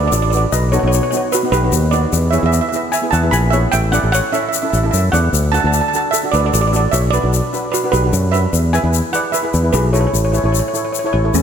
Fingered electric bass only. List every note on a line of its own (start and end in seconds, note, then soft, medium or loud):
0.12 0.45 A1 loud
0.52 0.77 B1 medium
0.83 0.99 B1 medium
1.52 1.68 B1 medium
1.72 2.05 D#2 loud
2.13 2.37 E2 medium
2.43 2.59 E2 medium
3.13 3.29 E2 medium
3.32 3.65 A#1 loud
3.73 3.98 A1 medium
4.03 4.20 A1 medium
4.73 4.89 A1 medium
4.93 5.11 F#2 medium
5.13 5.31 E2 medium
5.33 5.58 D2 medium
5.64 5.80 D2 medium
6.33 6.49 D2 medium
6.54 6.86 A1 medium
6.93 7.18 B1 medium
7.24 7.40 B1 medium
7.93 8.09 B1 medium
8.13 8.45 F#2 loud
8.53 8.78 E2 loud
8.84 9.00 E2 medium
9.54 9.70 E2 medium
9.74 10.06 B1 loud
10.13 10.38 A1 medium
10.44 10.60 A1 medium
11.14 11.30 A1 medium
11.34 11.42 E2 loud